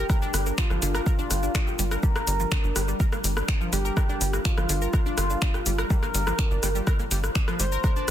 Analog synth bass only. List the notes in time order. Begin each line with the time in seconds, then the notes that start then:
0.34 G1
0.70 G1
0.82 G1
1.30 G1
1.79 G1
2.27 G1
2.64 G1
2.76 G1
3.24 G1
3.72 G1
4.21 G1
4.57 G1
4.69 G1
5.18 G1
5.66 G1
6.14 G1
6.51 G1
6.63 G1
7.11 G1
7.60 G1